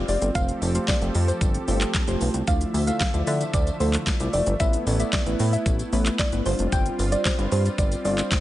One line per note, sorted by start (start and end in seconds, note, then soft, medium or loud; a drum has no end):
0.00 0.33 G3 medium
0.00 0.29 C4 medium
0.00 2.44 C4 medium
0.00 0.29 F4 medium
0.00 0.33 F4 medium
0.00 0.29 G4 medium
0.00 0.29 D5 medium
0.09 0.17 F1 loud
0.09 0.19 D5 medium
0.09 open hi-hat medium
0.09 tambourine soft
0.09 shaker medium
0.22 0.30 G1 medium
0.22 closed hi-hat medium
0.22 shaker medium
0.35 0.52 F1 loud
0.35 2.45 F3 medium
0.35 0.69 A3 medium
0.35 0.69 F4 medium
0.35 2.45 G4 medium
0.35 0.69 G4 medium
0.35 2.45 A4 loud
0.35 0.69 C5 medium
0.35 0.55 F5 loud
0.35 kick loud
0.35 closed hi-hat medium
0.35 tambourine medium
0.35 shaker medium
0.49 closed hi-hat medium
0.49 shaker medium
0.62 0.78 F1 loud
0.62 open hi-hat medium
0.62 tambourine medium
0.62 shaker medium
0.75 0.97 A3 medium
0.75 0.98 F4 medium
0.75 0.98 G4 medium
0.75 0.98 C5 medium
0.75 0.85 F5 medium
0.75 closed hi-hat medium
0.75 shaker medium
0.88 0.98 D5 medium
0.88 kick loud
0.88 snare loud
0.88 clap loud
0.88 closed hi-hat medium
0.88 tambourine medium
0.88 shaker medium
1.01 1.10 F1 loud
1.01 1.58 A3 medium
1.01 1.58 F4 medium
1.01 1.58 G4 medium
1.01 1.58 C5 medium
1.01 closed hi-hat soft
1.01 shaker soft
1.15 1.32 F2 loud
1.15 open hi-hat medium
1.15 tambourine medium
1.15 shaker medium
1.28 1.66 C5 medium
1.28 closed hi-hat soft
1.28 tambourine soft
1.28 shaker medium
1.41 1.58 G1 loud
1.41 kick loud
1.41 closed hi-hat medium
1.41 tambourine soft
1.41 shaker medium
1.54 closed hi-hat medium
1.54 shaker medium
1.68 1.85 G1 loud
1.68 2.02 A3 medium
1.68 2.02 F4 medium
1.68 2.02 G4 medium
1.68 2.02 C5 medium
1.68 open hi-hat medium
1.68 tambourine soft
1.68 shaker medium
1.81 clap medium
1.81 closed hi-hat medium
1.81 tambourine soft
1.81 shaker medium
1.94 kick loud
1.94 snare medium
1.94 clap loud
1.94 closed hi-hat medium
1.94 tambourine medium
1.94 shaker medium
2.08 2.16 F1 loud
2.08 2.42 A3 medium
2.08 2.42 F4 medium
2.08 2.42 G4 medium
2.08 2.42 C5 loud
2.08 closed hi-hat medium
2.08 shaker medium
2.21 2.29 B1 loud
2.21 open hi-hat medium
2.21 tambourine soft
2.21 shaker medium
2.34 2.43 C2 loud
2.34 closed hi-hat medium
2.34 shaker medium
2.47 2.64 D2 loud
2.47 4.58 D3 medium
2.47 4.58 F3 loud
2.47 2.81 A3 medium
2.47 6.42 A3 medium
2.47 2.81 E4 medium
2.47 2.81 F4 medium
2.47 2.82 D5 medium
2.47 4.58 E5 medium
2.47 2.58 F5 loud
2.47 kick loud
2.47 closed hi-hat medium
2.47 tambourine medium
2.47 shaker medium
2.61 closed hi-hat medium
2.61 shaker medium
2.74 2.91 D2 loud
2.74 open hi-hat medium
2.74 tambourine medium
2.74 shaker medium
2.87 3.10 A3 medium
2.87 3.10 E4 medium
2.87 3.10 F4 medium
2.87 3.10 E5 medium
2.87 2.97 F5 medium
2.87 closed hi-hat medium
2.87 tambourine soft
2.87 shaker medium
3.00 3.20 F5 medium
3.00 kick loud
3.00 snare loud
3.00 clap loud
3.00 closed hi-hat medium
3.00 tambourine medium
3.00 shaker medium
3.14 3.22 D2 loud
3.14 3.70 A3 medium
3.14 3.70 E4 medium
3.14 3.70 F4 medium
3.14 3.70 D5 medium
3.14 closed hi-hat soft
3.14 shaker soft
3.27 3.44 D3 loud
3.27 3.37 E5 medium
3.27 open hi-hat medium
3.27 tambourine medium
3.27 shaker medium
3.41 closed hi-hat soft
3.41 tambourine soft
3.41 shaker medium
3.54 3.70 D2 loud
3.54 3.74 D5 medium
3.54 kick loud
3.54 closed hi-hat medium
3.54 tambourine soft
3.54 shaker medium
3.67 closed hi-hat medium
3.67 tambourine soft
3.67 shaker medium
3.80 3.97 D2 loud
3.80 4.14 A3 medium
3.80 4.14 E4 medium
3.80 4.14 F4 medium
3.80 4.14 A4 medium
3.80 3.90 C5 medium
3.80 open hi-hat medium
3.80 tambourine soft
3.80 shaker medium
3.93 clap medium
3.93 closed hi-hat medium
3.93 shaker medium
4.07 kick loud
4.07 snare medium
4.07 clap loud
4.07 closed hi-hat medium
4.07 tambourine medium
4.07 shaker medium
4.20 4.28 C2 medium
4.20 4.54 A3 medium
4.20 4.54 E4 medium
4.20 4.54 F4 medium
4.20 4.54 D5 medium
4.20 closed hi-hat medium
4.20 shaker medium
4.33 4.42 F1 loud
4.33 4.43 D5 medium
4.33 open hi-hat medium
4.33 tambourine soft
4.33 shaker medium
4.47 4.55 G1 medium
4.47 closed hi-hat medium
4.47 shaker medium
4.60 4.77 A1 loud
4.60 4.94 A3 medium
4.60 6.44 B3 medium
4.60 4.94 B3 medium
4.60 6.44 E4 loud
4.60 4.94 E4 medium
4.60 4.94 B4 medium
4.60 4.80 E5 loud
4.60 kick loud
4.60 closed hi-hat medium
4.60 tambourine medium
4.60 shaker medium
4.73 closed hi-hat medium
4.73 shaker medium
4.87 5.03 A1 loud
4.87 open hi-hat medium
4.87 tambourine medium
4.87 shaker medium
5.00 5.22 A3 medium
5.00 5.22 B3 medium
5.00 5.22 E4 medium
5.00 5.23 D5 medium
5.00 5.10 E5 medium
5.00 closed hi-hat medium
5.00 tambourine soft
5.00 shaker medium
5.13 5.23 D5 medium
5.13 kick loud
5.13 snare loud
5.13 clap loud
5.13 closed hi-hat medium
5.13 tambourine medium
5.13 shaker medium
5.26 5.35 A1 medium
5.26 5.83 A3 medium
5.26 5.83 B3 medium
5.26 5.83 E4 medium
5.26 5.83 B4 medium
5.26 closed hi-hat soft
5.26 shaker soft
5.39 5.56 A2 loud
5.39 open hi-hat medium
5.39 tambourine medium
5.39 shaker medium
5.53 5.90 E5 medium
5.53 closed hi-hat soft
5.53 tambourine soft
5.53 shaker medium
5.66 5.83 A1 medium
5.66 kick loud
5.66 closed hi-hat medium
5.66 tambourine soft
5.66 shaker medium
5.79 closed hi-hat medium
5.79 tambourine soft
5.79 shaker medium
5.93 6.09 A1 loud
5.93 6.26 A3 medium
5.93 6.27 B3 medium
5.93 6.27 E4 medium
5.93 6.27 B4 medium
5.93 open hi-hat medium
5.93 tambourine soft
5.93 shaker medium
6.06 clap medium
6.06 closed hi-hat medium
6.06 shaker medium
6.19 6.29 D5 medium
6.19 kick loud
6.19 snare medium
6.19 clap loud
6.19 closed hi-hat medium
6.19 tambourine medium
6.19 shaker medium
6.32 6.41 G1 medium
6.32 6.46 A3 medium
6.32 6.46 B3 medium
6.32 6.46 E4 medium
6.32 6.46 B4 medium
6.32 closed hi-hat medium
6.32 shaker medium
6.46 6.54 G1 loud
6.46 7.02 G3 medium
6.46 8.40 G3 medium
6.46 8.40 C4 medium
6.46 7.02 D4 medium
6.46 8.40 F4 medium
6.46 7.02 F4 medium
6.46 6.56 C5 medium
6.46 7.02 C5 medium
6.46 open hi-hat medium
6.46 tambourine soft
6.46 shaker medium
6.59 6.67 F1 loud
6.59 closed hi-hat medium
6.59 shaker medium
6.72 6.89 G1 loud
6.72 6.82 G5 loud
6.72 kick loud
6.72 closed hi-hat medium
6.72 tambourine medium
6.72 shaker medium
6.86 closed hi-hat medium
6.86 shaker medium
6.99 7.16 G1 loud
6.99 open hi-hat medium
6.99 tambourine medium
6.99 shaker medium
7.12 7.35 G3 medium
7.12 7.35 D4 medium
7.12 7.35 F4 medium
7.12 7.35 C5 medium
7.12 7.22 D5 medium
7.12 closed hi-hat medium
7.12 tambourine soft
7.12 shaker medium
7.25 7.45 C5 medium
7.25 kick loud
7.25 snare loud
7.25 clap loud
7.25 closed hi-hat medium
7.25 tambourine medium
7.25 shaker medium
7.38 7.47 G1 loud
7.38 7.95 G3 medium
7.38 7.95 D4 medium
7.38 7.95 F4 medium
7.38 7.95 B4 medium
7.38 closed hi-hat soft
7.38 shaker soft
7.52 7.69 G2 loud
7.52 7.62 C5 medium
7.52 open hi-hat medium
7.52 tambourine medium
7.52 shaker medium
7.65 closed hi-hat soft
7.65 tambourine soft
7.65 shaker medium
7.78 7.95 G1 loud
7.78 7.98 D5 medium
7.78 kick loud
7.78 closed hi-hat medium
7.78 tambourine soft
7.78 shaker medium
7.92 closed hi-hat medium
7.92 tambourine soft
7.92 shaker medium
8.05 8.22 G1 loud
8.05 8.39 G3 medium
8.05 8.39 D4 medium
8.05 8.39 F4 medium
8.05 8.39 C5 medium
8.05 8.15 D5 medium
8.05 open hi-hat medium
8.05 tambourine soft
8.05 shaker medium
8.18 clap medium
8.18 closed hi-hat medium
8.18 tambourine soft
8.18 shaker medium
8.32 kick loud
8.32 snare medium
8.32 clap loud
8.32 closed hi-hat medium
8.32 tambourine medium
8.32 shaker medium